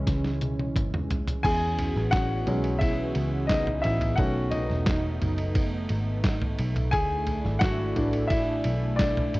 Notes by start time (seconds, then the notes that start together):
Already playing: E3 G#3 C#4 E4 E5
0.07 C#2, kick, snare, closed hi-hat
0.24 snare
0.41 closed hi-hat, high tom
0.59 high tom
0.76 kick, closed hi-hat, mid tom
0.94 mid tom
1.10 closed hi-hat, floor tom
1.27 closed hi-hat, floor tom
1.43 E2 E3 B3 C#4 F#4 G#4 G#5, kick, crash, ride
1.79 floor tom, ride
1.96 A1, snare
2.11 F#4 F#5, kick, snare, clap, ride
2.47 B1 F#3 G#3 C#4, floor tom, ride
2.64 ride
2.79 E4 E5, kick, ride
3.15 C#2, ride
3.47 D#4 D#5, kick, snare, clap, ride
3.67 floor tom
3.82 A1 E4 E5, ride
4.01 floor tom, ride
4.16 B1 D#3 A3 C#4 D#4 F#4 F#5, kick, ride
4.51 D#4 D#5, floor tom, ride
4.70 E1, snare
4.86 kick, snare, clap, ride
5.22 F#1, floor tom, ride
5.38 ride
5.55 kick, ride
5.89 G#1, ride
6.24 kick, snare, clap, ride
6.42 floor tom
6.59 B1, ride
6.76 floor tom, ride
6.91 D2 D4 E4 G#4 G#5, kick, ride
7.27 floor tom, ride
7.45 G#1, snare
7.59 F#4 F#5, kick, snare, clap, ride
7.95 A1 E3 A3 D4, floor tom, ride
8.13 ride
8.27 E5, kick, ride
8.32 E4
8.64 B1, ride
8.96 D5, kick, snare, ride
9.00 D4, clap
9.17 floor tom
9.34 G#1, ride